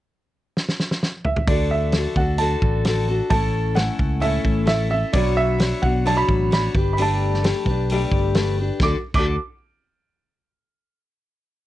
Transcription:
0.57 snare medium
0.69 snare medium
0.80 snare medium
0.91 snare medium
1.03 snare medium
1.25 1.49 E5 medium
1.25 mid tom medium
1.36 mid tom medium
1.47 2.05 D2 medium
1.47 1.93 D3 medium
1.47 1.94 D4 medium
1.47 1.94 F#4 medium
1.47 1.97 A4 medium
1.47 1.71 D5 medium
1.47 kick loud
1.47 open hi-hat soft
1.71 2.14 E5 medium
1.92 2.17 D3 medium
1.92 2.18 D4 medium
1.92 snare medium
1.92 open hi-hat soft
1.97 2.17 F#4 medium
1.97 2.15 A4 medium
2.16 2.55 D2 medium
2.16 2.39 D4 soft
2.16 2.39 F#4 soft
2.16 2.39 A4 soft
2.16 2.38 F#5 medium
2.16 kick medium
2.38 2.84 D3 medium
2.38 2.86 D4 medium
2.38 2.86 F#4 medium
2.38 2.86 A4 medium
2.38 3.28 A5 medium
2.38 open hi-hat soft
2.62 3.20 A1 medium
2.62 kick medium
2.85 3.08 D3 medium
2.85 3.09 D4 medium
2.85 3.08 F#4 medium
2.85 snare medium
2.85 open hi-hat soft
2.89 3.06 A4 medium
3.08 3.31 D4 soft
3.08 3.31 F#4 soft
3.08 3.31 A4 medium
3.30 3.89 A1 medium
3.30 3.76 A2 medium
3.30 3.74 A3 medium
3.30 3.75 C#4 medium
3.30 3.76 E4 medium
3.30 3.76 A4 medium
3.30 3.73 A5 medium
3.30 kick loud
3.30 open hi-hat soft
3.75 4.20 A3 medium
3.75 4.21 C#4 medium
3.75 4.21 E4 medium
3.75 4.22 A4 medium
3.75 4.23 F#5 medium
3.75 snare medium
3.75 open hi-hat soft
3.99 4.38 C#2 medium
3.99 kick medium
4.20 4.67 A2 medium
4.20 4.64 A3 medium
4.20 4.66 C#4 medium
4.20 4.67 E4 medium
4.20 4.67 A4 medium
4.20 4.66 E5 medium
4.20 open hi-hat soft
4.44 5.03 A1 medium
4.44 kick medium
4.66 4.90 A3 soft
4.66 4.91 C#4 medium
4.66 4.91 E4 medium
4.66 4.89 A4 medium
4.66 4.89 E5 medium
4.66 snare medium
4.66 open hi-hat soft
4.90 5.15 C#4 soft
4.90 5.14 E4 soft
4.90 5.13 A4 soft
4.90 5.15 E5 medium
5.13 5.72 B1 medium
5.13 5.59 B2 medium
5.13 5.60 F#3 medium
5.13 5.58 B3 medium
5.13 5.60 D4 medium
5.13 5.61 F#4 medium
5.13 5.61 C#5 medium
5.13 5.37 D5 medium
5.13 kick loud
5.13 open hi-hat soft
5.37 5.84 E5 loud
5.58 5.82 B3 medium
5.58 5.83 D4 medium
5.58 5.82 F#4 medium
5.58 5.81 C#5 medium
5.58 snare loud
5.58 open hi-hat soft
5.82 6.22 B1 medium
5.82 6.05 B3 soft
5.82 6.04 D4 soft
5.82 6.05 F#4 soft
5.82 6.05 C#5 soft
5.82 6.06 F#5 medium
5.82 kick medium
6.05 6.52 B2 medium
6.05 6.51 F#3 medium
6.05 6.49 B3 medium
6.05 6.52 D4 medium
6.05 6.51 F#4 medium
6.05 6.52 C#5 medium
6.05 6.18 A5 medium
6.05 open hi-hat soft
6.17 6.49 B5 loud
6.29 6.67 A1 medium
6.29 kick medium
6.51 6.74 B3 soft
6.51 6.75 D4 medium
6.51 6.75 F#4 medium
6.51 6.74 C#5 medium
6.51 6.92 B5 medium
6.51 snare medium
6.51 open hi-hat soft
6.74 7.52 G1 medium
6.74 6.98 D4 soft
6.74 6.98 G4 soft
6.74 6.98 B4 soft
6.74 kick medium
6.93 6.99 B5 medium
6.97 7.43 G3 medium
6.97 7.41 A3 medium
6.97 7.43 D4 medium
6.97 7.44 G4 medium
6.97 7.44 B4 medium
6.97 open hi-hat soft
7.02 8.33 A5 medium
7.34 snare soft
7.42 7.66 A3 medium
7.42 7.66 D4 medium
7.42 7.67 G4 medium
7.42 7.66 B4 medium
7.42 snare medium
7.42 open hi-hat soft
7.65 8.04 B1 medium
7.65 7.90 G4 soft
7.65 7.89 B4 medium
7.65 kick medium
7.70 7.91 D4 soft
7.90 8.36 G3 medium
7.90 8.34 A3 medium
7.90 8.35 D4 medium
7.90 8.36 G4 medium
7.90 8.36 B4 medium
7.90 open hi-hat soft
8.12 8.69 G1 medium
8.12 kick medium
8.35 8.58 A3 medium
8.35 8.58 D4 medium
8.35 8.58 G4 medium
8.35 snare loud
8.35 open hi-hat soft
8.39 8.57 B4 medium
8.58 8.81 D4 soft
8.58 8.81 G4 soft
8.58 8.81 B4 soft
8.80 8.93 D2 medium
8.80 8.95 D3 medium
8.80 8.95 D4 medium
8.80 8.94 D6 medium
8.80 kick medium
8.80 snare medium
8.84 8.96 F#4 medium
8.84 8.96 A4 medium
9.14 9.36 D2 medium
9.14 9.34 D3 medium
9.14 9.34 D4 medium
9.14 9.36 D6 medium
9.14 kick medium
9.14 crash medium
9.19 9.35 F#4 medium
9.19 9.35 A4 medium

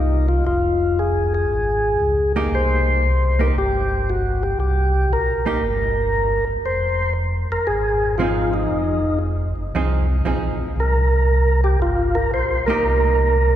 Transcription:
0.00 0.42 C2 medium
0.00 0.27 D#4 medium
0.28 0.45 F4 medium
0.46 1.45 F1 medium
0.46 1.00 F4 medium
0.99 1.33 G#4 medium
1.34 2.32 G#4 medium
1.48 1.97 G#1 medium
2.00 2.48 C#2 medium
2.36 3.01 A#3 medium
2.36 3.01 D#4 medium
2.36 3.01 G4 medium
2.51 3.51 C2 medium
2.51 3.42 C5 loud
3.39 3.54 A#3 soft
3.39 3.55 D#4 soft
3.39 3.55 G4 medium
3.39 3.48 A#4 medium
3.55 4.55 G1 medium
3.55 4.10 G4 medium
4.10 4.44 F#4 medium
4.43 4.58 G4 medium
4.58 5.06 C2 medium
4.58 5.12 G4 medium
5.10 5.58 A#1 medium
5.10 5.45 A#4 medium
5.46 5.61 A#3 medium
5.46 5.61 D#4 medium
5.46 5.61 G4 medium
5.46 6.45 A#4 medium
5.61 6.44 G1 medium
6.48 6.56 G1 soft
6.65 7.47 F1 medium
6.65 7.13 C5 medium
7.50 7.59 F1 soft
7.50 7.68 A#4 medium
7.67 8.67 G#1 medium
7.67 8.15 G#4 medium
8.18 8.98 F3 medium
8.18 8.99 C4 medium
8.18 8.99 D#4 medium
8.18 8.54 F4 medium
8.18 8.99 G#4 medium
8.54 9.19 D#4 medium
8.71 9.53 F1 medium
9.56 9.72 F#1 medium
9.72 10.21 C2 medium
9.72 10.06 F3 medium
9.72 10.06 C4 medium
9.72 10.06 D#4 medium
9.72 10.06 G#4 medium
10.24 10.73 A#1 medium
10.24 10.56 F3 medium
10.24 10.57 C4 medium
10.24 10.57 D#4 medium
10.24 10.57 G#4 medium
10.76 11.76 C2 medium
10.76 11.61 A#4 medium
11.64 11.80 G4 medium
11.79 12.28 G1 medium
11.79 12.17 F4 medium
12.15 12.31 A#4 medium
12.32 12.80 A#1 medium
12.32 12.65 C5 medium
12.66 13.33 A#3 medium
12.66 13.33 D#4 medium
12.66 13.34 G4 medium
12.66 13.56 A#4 medium
12.83 13.56 C2 medium

